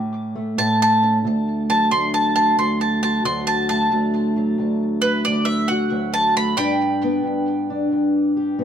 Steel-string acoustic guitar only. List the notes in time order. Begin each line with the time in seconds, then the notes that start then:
Already playing: A2 C#4
0.35 A3
0.58 A2
1.03 C#4
1.24 D2 A3
1.69 F#3
1.91 D2
2.36 A3
2.57 D2
3.03 F#4
3.24 D2 F#3
3.71 A3
3.92 D2 A3
4.36 F#3
4.58 D2
5.04 A3
5.27 D2
5.70 F#4
5.91 D2 F#3
6.36 A3
6.57 G2 D4
7.03 B3
7.24 G2
7.70 D4
7.92 G2
8.37 G4
8.58 G2 B3